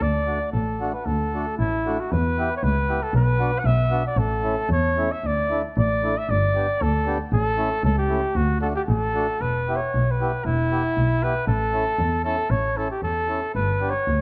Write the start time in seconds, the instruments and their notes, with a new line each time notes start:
0.01 double bass D2, flugelhorn D5
0.27 accordion A3 D4 F#4
0.52 double bass A1, flugelhorn A4
0.81 accordion A3 D4 F#4
0.93 flugelhorn B4
1.06 double bass D2, flugelhorn A4
1.34 accordion A3 D4 F#4
1.58 double bass A1, flugelhorn E4
1.86 accordion A3 D4 F#4
2.00 flugelhorn F#4
2.12 double bass E2, flugelhorn B4
2.39 accordion B3 E4 G4
2.56 flugelhorn C#5
2.63 double bass C#2, flugelhorn B4
2.89 accordion B3 E4 G4
3.03 flugelhorn A4
3.13 double bass B1, flugelhorn B4
3.40 accordion B3 D4 F#4
3.59 flugelhorn F#5
3.64 double bass B1, flugelhorn E5
3.91 accordion B3 D4 F#4
4.07 flugelhorn D5
4.16 double bass A1, flugelhorn A4
4.44 accordion A3 C#4 E4
4.69 double bass E2, flugelhorn C#5
4.97 accordion A3 C#4 E4
5.12 flugelhorn E5
5.23 double bass D2, flugelhorn D5
5.51 accordion A3 D4 E4
5.76 double bass A1, flugelhorn D5
6.03 accordion A3 D4 E4
6.18 flugelhorn E5
6.29 double bass G1, flugelhorn D5
6.55 accordion B3 D4 G4
6.81 double bass D2, flugelhorn A4
7.06 accordion B3 D4 G4
7.32 double bass A1, flugelhorn A4
7.58 accordion A3 C#4 E4
7.83 double bass C#2, flugelhorn A4
7.98 flugelhorn G4
8.09 accordion A3 C#4 E4
8.35 double bass D2, flugelhorn F#4
8.61 accordion A3 D4 F#4, flugelhorn A4
8.76 flugelhorn G4
8.88 double bass A1, flugelhorn A4
9.15 accordion A3 D4 F#4
9.41 double bass E1, flugelhorn B4
9.69 accordion B3 E4 G4
9.76 flugelhorn C#5
9.94 double bass B1
10.11 flugelhorn B4
10.21 accordion B3 E4 G4
10.45 double bass E1, flugelhorn E4
10.72 accordion B3 E4 G4
10.97 double bass B1
11.23 accordion B3 E4 G4, flugelhorn B4
11.47 double bass A1, flugelhorn A4
11.73 accordion C#4 E4 A4
11.98 double bass E2
12.25 accordion C#4 E4 A4, flugelhorn A4
12.50 double bass A1, flugelhorn C#5
12.77 accordion C#4 E4 A4, flugelhorn A4
12.91 flugelhorn G4
13.02 double bass E2, flugelhorn A4
13.29 accordion C#4 E4 A4
13.55 double bass G1, flugelhorn B4
13.81 accordion B3 D4 G4
13.90 flugelhorn C#5
14.07 double bass D2